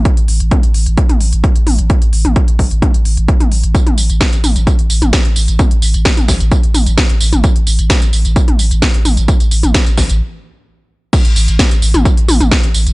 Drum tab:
CC |----------------|----------------|----------------|----------------|
HH |xxoxxxoxxxoxxxox|xxoxxxoxxxoxxxox|xxoxxxoxxxoxxxox|xxoxxxoxxxoxxxox|
TB |----------------|----------------|x-xxxxxxx-xxx-xx|x-xxxxxxx-xxx-xx|
SD |----------------|----------------|----o-------o---|----o-o-----o---|
T2 |----o----o----o-|---o----o----o--|-o----o----o----|o----o----o----o|
BD |o---o---o---o---|o---o-o-o---o---|o---o---o---o---|o---o-o-o---o---|

CC |----------------|----------------|x---------------|
HH |xxoxxxoxxxoxxxox|xxoxxxox--------|xxoxxxoxxxoxxxox|
TB |x-xxxxxxx-xxx-xx|xxxxxxxx--------|x-xxxxxxx-xxx-xx|
SD |----o-------o---|----o-o---------|----o-------o---|
T2 |----o----o----o-|---o------------|-------o--oo----|
BD |o---o---o---o---|o---o-o---------|o---o---o---o---|